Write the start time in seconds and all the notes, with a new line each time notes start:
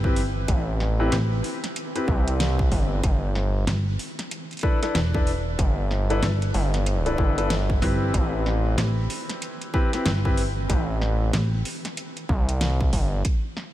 Already playing: G1
0.04 C4 E4 G4 B4, kick
0.16 open hi-hat
0.48 A1, kick, closed hi-hat
0.80 snare
1.00 C4 E4 G4 B4
1.12 A1, snare, closed hi-hat
1.44 open hi-hat
1.64 snare, closed hi-hat
1.76 closed hi-hat
1.96 C4 E4 G4 B4, closed hi-hat
2.08 C2, kick
2.28 closed hi-hat
2.40 snare, closed hi-hat
2.59 kick
2.72 G1, kick, open hi-hat
3.04 G1, kick, closed hi-hat
3.35 snare
3.67 G1, snare, closed hi-hat
3.99 open hi-hat
4.19 snare, closed hi-hat
4.31 closed hi-hat
4.51 closed hi-hat
4.53 closed hi-hat
4.57 closed hi-hat
4.59 closed hi-hat
4.61 D4 E4 A4 B4, kick, closed hi-hat
4.83 D4 E4 A4 B4, snare, closed hi-hat
4.95 E1, snare, closed hi-hat
5.14 D4 E4 A4 B4, kick
5.27 open hi-hat
5.59 G1, kick, closed hi-hat
5.91 snare
6.10 D4 E4 A4 B4, closed hi-hat
6.22 G1, snare, closed hi-hat
6.42 closed hi-hat
6.54 G1, open hi-hat
6.74 snare, closed hi-hat
6.86 closed hi-hat
7.06 D4 E4 A4 B4, closed hi-hat
7.18 G1 D4 E4 A4 B4, kick
7.38 D4 E4 A4 B4, closed hi-hat
7.50 snare, closed hi-hat
7.70 kick
7.82 G1 C4 E4 G4 B4, kick, open hi-hat
8.14 A1, kick, closed hi-hat
8.46 snare
8.78 A1, snare, closed hi-hat
9.10 open hi-hat
9.29 snare, closed hi-hat
9.42 closed hi-hat
9.61 closed hi-hat
9.74 C4 E4 G4 B4, kick
9.93 C4 E4 G4 B4, snare, closed hi-hat
10.06 G1, snare, closed hi-hat
10.25 C4 E4 G4 B4, kick
10.37 open hi-hat
10.70 A1, kick, closed hi-hat
11.01 snare
11.33 A1, snare, closed hi-hat
11.65 open hi-hat
11.85 snare, closed hi-hat
11.97 closed hi-hat
12.17 closed hi-hat
12.29 C2, kick
12.49 closed hi-hat
12.61 snare, closed hi-hat
12.81 kick
12.93 G1, kick, open hi-hat
13.25 kick, closed hi-hat
13.57 snare